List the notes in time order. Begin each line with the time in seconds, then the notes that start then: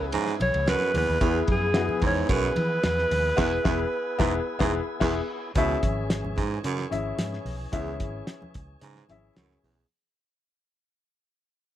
Already playing: C#2 B3 C#4 E4 G#4 B4 C#5
0.12 G#2, ride, muted conga, high conga
0.27 snare, muted conga
0.40 B1 C#5, ride, high conga
0.54 C#2, ride
0.67 F#2 B4, snare, ride, high conga
0.82 snare
0.94 D#2 E2 B4, open hi-hat, ride, high conga, low conga
1.09 D#2
1.20 E2 B3 E4 G#4, kick, hi-hat pedal, ride
1.34 muted conga
1.48 F#2, kick, ride, high conga
1.52 G#4
1.74 B3 E4 F#4, snare, ride
1.81 G#4
1.89 muted conga, high conga, low conga
2.01 E2 G#2, kick, ride, low conga
2.06 C#5
2.29 B1 F#2, kick, ride, high conga
2.33 B4
2.43 muted conga
2.56 E3, ride, high conga
2.83 E2, snare, ride, muted conga, high conga
2.98 snare
3.11 D#2, open hi-hat, ride, high conga, low conga
3.37 E1 E2 B3 E4 G#4, kick, snare, crash
3.64 E1 E2 B3 E4 G#4, kick, snare
4.18 E1 G#2 B3 E4 G#4, kick, snare
4.59 E1 G#2 B3 E4 G#4, kick, snare
5.00 E1 E2 B3 E4 G#4, kick, snare, crash
5.55 C#2 B2 E3 C#4 E4 G#4 E5, kick, closed hi-hat, muted conga
5.69 muted conga
5.83 G#1, kick, closed hi-hat, high conga
6.10 snare, closed hi-hat
6.24 high conga, low conga
6.37 G#2, kick, closed hi-hat, low conga
6.64 F#2 C#3, closed hi-hat
6.79 snare
6.91 G#1 C#4 E4 G#4 E5, closed hi-hat, high conga
7.18 G#2, snare, closed hi-hat, muted conga, high conga
7.33 snare
7.45 B1, open hi-hat, high conga, low conga
7.72 C#2 E2 C#4 E4 G#4 E5, kick, closed hi-hat, muted conga
7.87 muted conga
8.00 G#1, kick, closed hi-hat, high conga
8.27 snare, closed hi-hat, muted conga
8.42 muted fingered electric bass stroke, muted conga, high conga, low conga
8.54 C#2, kick, closed hi-hat, low conga
8.81 G#2 C#3, closed hi-hat, muted conga
8.95 snare, muted conga
9.09 G#1 C#4 E4 G#4 E5, closed hi-hat, high conga
9.36 C#2 F#2, snare, closed hi-hat, muted conga, high conga
9.51 snare
9.63 B1 E2, open hi-hat, high conga, low conga